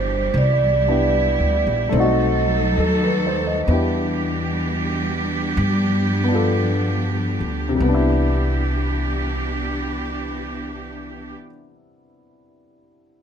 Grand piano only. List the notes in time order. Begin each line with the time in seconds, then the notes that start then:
Already playing: B2 D4 E4 G4
0.88 B3 D4 E4 G4
1.89 A3 C4
1.96 D#4 F#4
2.80 A4
3.03 B4
3.27 C5
3.47 D#5
3.67 B3 D4 E4
3.72 G4
6.24 B3
6.28 D4 F4
6.35 A4
7.69 C3
7.76 G3
7.82 B3
7.89 D4
7.94 E4